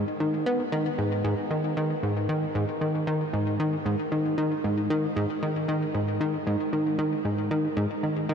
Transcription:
analog synth bass
0.20 D#3
0.46 B3
0.72 D#3
0.98 G#2
1.24 G#2
1.51 D#3
1.77 D#3
2.03 G#2
2.29 D#3
2.55 G#2
2.81 D#3
3.07 D#3
3.33 G#2
3.60 D#3
3.86 G#2
4.12 D#3
4.38 D#3
4.64 G#2
4.90 D#3
5.16 G#2
5.43 D#3
5.68 D#3
5.95 G#2
6.21 D#3
6.47 G#2
6.73 D#3
6.99 D#3
7.25 G#2
7.51 D#3
7.77 G#2
8.03 D#3
8.29 D#3

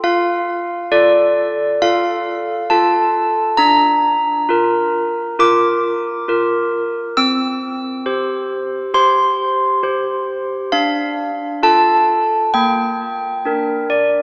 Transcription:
handbells
0.04 F4 F5
0.92 F4 A4 D5
1.82 F4 A4 F5
2.70 F4 A4 A5
3.57 D4 A#5
4.49 F4 A#4
5.39 F4 A#4 D6
6.28 F4 A#4
7.17 C4 E6
8.06 G4 C5
8.94 G4 C5 C6
9.83 G4 C5
10.72 D4 F5
11.63 F4 A4 A5
12.54 A#3 G5
13.45 D4 A#4
13.90 D5

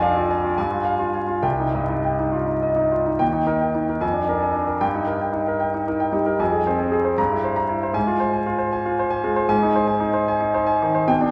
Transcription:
grand piano
Already playing: F2 F4 G#5
0.02 D4 F5
0.17 F4
0.31 G#5
0.44 F4
0.58 G2 G#5
0.71 F4
0.85 F5
0.99 F4
1.14 G#5
1.27 F4
1.43 C2 G5
1.60 D#4
1.75 G2 D#5
1.89 D#4
2.04 G5
2.19 D#4
2.32 F4
2.47 D#4
2.62 D#5
2.76 D#4
2.92 F4
3.06 D#4
3.19 D#2 G5
3.33 D#4
3.46 D#4 A#4
3.61 G5
3.75 D#4
3.90 A#4
4.01 F2 G#5
4.13 D4
4.28 D4 A#4
4.42 G#5
4.53 D4
4.67 A#4
4.81 G2 G5
4.94 D#4
5.07 A#4
5.21 G5
5.33 D#4
5.48 A#4
5.60 G5
5.74 D#4
5.88 D#4 A#4
6.00 G5
6.12 G3 D#4
6.26 A#4
6.40 F2 G#5
6.52 G#4
6.66 C4 C5
6.79 G#5
6.92 G#4
7.05 C5
7.18 G2 A#5
7.32 E4
7.44 C5
7.56 A#5
7.69 E4
7.83 C5
7.94 G#2 G#5
8.07 F4
8.20 C5
8.33 G#5
8.47 F4
8.58 C5
8.73 G#5
8.85 F4
8.99 C5
9.10 G#5
9.24 G#3 F4
9.36 C5
9.49 G#2 G#5
9.63 D#4
9.76 C5
9.87 G#5
10.00 D#4
10.14 C5
10.28 G#5
10.40 D#4
10.54 D#4 C5
10.66 G#5
10.82 D#3 D#4
10.95 C5
11.07 B2 G5
11.21 D4

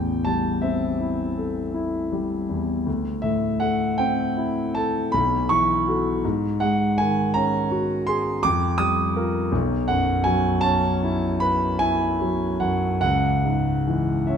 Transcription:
grand piano
Already playing: A1 E2 G5
0.25 G3 A5
0.62 C4 E5
1.00 E4
1.38 A4
1.74 E4
2.12 G3
2.49 E2
2.86 D2
3.22 A2 E5
3.60 A3 F#5
3.98 C4 G5
4.37 E4
4.75 A4 A5
5.12 B1 B5
5.49 E3 C#6
5.87 F#4 A4
6.25 G#2
6.60 G#3 F#5
6.98 D#3 G#5
7.34 C#4 A#5
7.71 F#4
8.07 G#4 C6
8.43 F2 D6
8.78 G3 D#6
9.16 F4 A#4
9.52 B1
9.88 F#2 F#5
10.24 F#3 G#5
10.61 C#4 A5
11.03 E4
11.40 B4 B5
11.79 E4 G#5
12.21 F#3
12.60 F#2 F#5
13.01 C#2 F#5
13.44 G#2
13.87 E3
14.27 C#4 E5

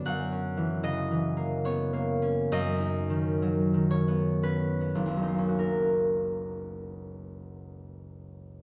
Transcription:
harp
Already playing: F#3
0.05 F#2 F#5
0.32 C#4
0.57 E3
0.83 C#3 D#5
1.11 E3
1.37 A#3
1.65 B3 C#5
1.93 A#3
2.22 C#4
2.52 F#2 D#5
2.79 D#4
3.10 D#3
3.42 F#3
3.74 D#3
3.91 C#5
4.08 B3
4.43 C#4 B4
4.81 B3
4.95 F#1
5.06 C#2
5.17 F#3
5.22 D#4
5.28 A#3
5.38 C#4
5.49 F#4
5.59 A#4

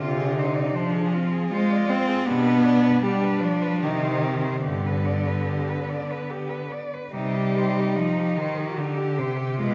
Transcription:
cello
Already playing: C3 D3
0.00 F4
0.18 G#4
0.38 D#4 C5
0.56 D5
0.74 F3 D4 C5
0.93 G#4
1.13 C4 F4
1.32 G#4
1.51 G#3 F4 C5
1.71 D5
1.89 C4 C5
2.08 G#4
2.26 B2 B3 D4 G4
2.46 B4
2.64 D5
2.85 B4
3.02 G3 G4
3.07 D4
3.24 B4
3.40 F3 D5
3.62 B4
3.81 C3 D#3 D#4 G4
4.03 C5
4.23 C4 G4
4.44 C5
4.65 G2 D3 B3 G4
4.86 B4
5.06 D5
5.27 B4
5.49 G4
5.69 B4
5.89 D5
6.11 B4
6.30 G4
6.49 B4
6.72 D5
6.94 B4
7.13 C3 G3 D#4
7.35 G4
7.57 C5
7.80 G4
7.96 F3 D#4
8.20 G4
8.38 D#3 C5
8.58 G4
8.76 D3 D#4 G4
8.98 G4
9.18 C3 C5
9.37 G4
9.59 B2 G#3 F4
9.64 B3

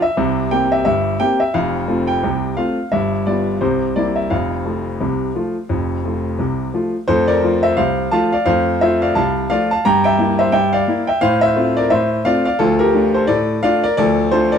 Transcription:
grand piano
0.02 E5
0.17 C2 C3
0.51 A#3 C4 G4 G5
0.72 E5
0.85 G1 G2 E5
1.20 A#3 C4 G4 G5
1.40 E5
1.54 F1 F2 F5
1.88 A3 C4 F4
2.07 G5
2.23 C2 C3
2.57 A3 C4 F4 F5
2.92 G1 G2 E5
3.26 G3 B3 F4 D5
3.61 C2 C3 C5
3.96 G3 A#3 E4 D5
4.16 E5
4.30 F1 F2 F5
4.65 F3 A3 F4
5.01 C2 C3
5.35 F3 A3 F4
5.69 F1 F2
6.05 F3 A3 F4
6.39 C2 C3
6.74 F3 A3 F4
7.08 F2 A3 A4 C5
7.28 A#4 D5
7.43 F3 A3 F4
7.63 C5 E5
7.77 C2 C5 F5
8.12 F3 A3 F4 F5 A5
8.32 D5 F5
8.46 F2 A3 C5 F5
8.81 F3 A3 F4 C5 E5
9.02 D5 F5
9.15 C2 F5 A5
9.50 F3 A3 F4 D5 F5
9.71 F5 A5
9.85 G2 G5 A#5
10.04 E5 G5
10.19 A#3 E4
10.39 C5 E5
10.52 G2 E5 G5
10.73 D5 F5
10.88 A#3 E4
11.07 E5 G5
11.21 A2 C5 F5
11.41 C5 E5
11.56 A3 C4 F4
11.77 A#4 D5
11.90 A2 C5 E5
12.25 A3 C4 F4 D5 F5
12.45 D5 F5
12.59 D2 F3 F4 A4
12.79 G4 A#4
12.94 A3 D4 F4
13.14 A4 C5
13.27 A2 A4 D5
13.63 A3 D4 F4 D5 F5
13.84 A#4 D5
13.97 D2 F3 A4 D5
14.31 A3 D4 F4 A4 C5
14.52 A#4 D5

